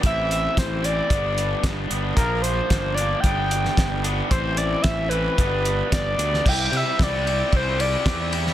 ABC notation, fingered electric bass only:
X:1
M:4/4
L:1/16
Q:1/4=112
K:C
V:1 name="Fingered electric bass" clef=bass
A,,,4 A,,,4 G,,,4 G,,,2 G,,,2 | _B,,,4 G,,,4 G,,,4 G,,,4 | A,,,4 A,,,4 G,,,4 G,,,2 D,,2 | C,,2 C, z C,,4 C,,4 E,,4 |]